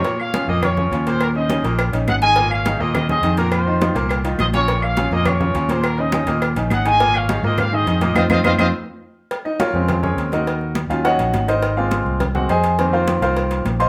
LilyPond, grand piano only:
<<
  \new Staff \with { instrumentName = "Grand piano" } { \time 4/4 \key bes \minor \tempo 4 = 207 <bes, bes bes'>4 <des des' f'>8 <bes, bes bes'>4 <des des' f'>8 <des des' f'>8 <bes, bes bes'>8~ | <bes, bes bes'>8 <des des' ees'>8 <des des' ees'>8 <bes, bes bes'>4 <des des' ees'>4 <ees ees' aes'>8 | <bes, bes bes'>4 <ees ees' aes'>8 <bes, bes bes'>4 <ees ees' aes'>8 <ees ees' aes'>8 <bes, bes bes'>8~ | <bes, bes bes'>8 <ees ees' f'>8 <ees ees' f'>8 <bes, bes bes'>4 <ees ees' f'>4 <des des' f'>8 |
<bes, bes bes'>4 <des des' f'>8 <bes, bes bes'>4 <des des' f'>8 <des des' f'>8 <bes, bes bes'>8~ | <bes, bes bes'>8 <des des' ees'>8 <des des' ees'>8 <bes, bes bes'>4 <des des' ees'>4 <ees ees' aes'>8 | <bes, bes bes'>4 <ees ees' aes'>8 <bes, bes bes'>4 <ees ees' aes'>8 <ees ees' aes'>8 <bes, bes bes'>8 | <c' ees' f'>8 <c' ees' f'>8 <c' ees' f'>8 <c' ees' f'>8 r2 |
r8 <ees' ees''>8 <f' bes' des'' f''>4. <des' aes' bes' des''>4 <ees' ges' bes' ees''>8~ | <ees' ges' bes' ees''>4 r8 <f' f''>8 <ges' des'' ees'' ges''>4. <ees' bes' c'' ees''>8~ | <ees' bes' c'' ees''>8 <f' f''>4. r8 <ges' ges''>8 <aes' c'' ees'' aes''>4~ | <aes' c'' ees'' aes''>8 <f' bes' c'' f''>4 <f' bes' c'' f''>4. r8 <c'' ees'' f'' c'''>8 | }
  \new Staff \with { instrumentName = "Grand piano" } { \time 4/4 \key bes \minor r1 | r1 | r1 | r1 |
r1 | r1 | r1 | r1 |
r4. <des aes c'>2~ <des aes c'>8 | r4. <ees ges des'>2~ <ees ges des'>8 | r8 <aes bes c'>4. r8 <aes bes c'>8 r4 | <ees bes c'>1 | }
>>